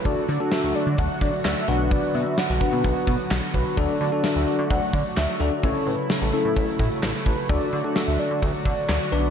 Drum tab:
HH |xxxx-xxxxxxx-xxx|xxxx-xxxxxxx-xox|xxxx-xxxxxxx-xxx|xxxx-xoxxxxx-xxx|
CP |------------x---|------------x---|------------x---|------------x---|
SD |----o-------o---|----o-------o---|----o-------o---|----o-------o---|
BD |o-------o-o-----|o-----o-o-o---o-|o-------o-o-----|o-------o-o---o-|

HH |xxxx-xoxxxxx-xxx|
CP |------------x---|
SD |----o-------o---|
BD |o-------o-o-----|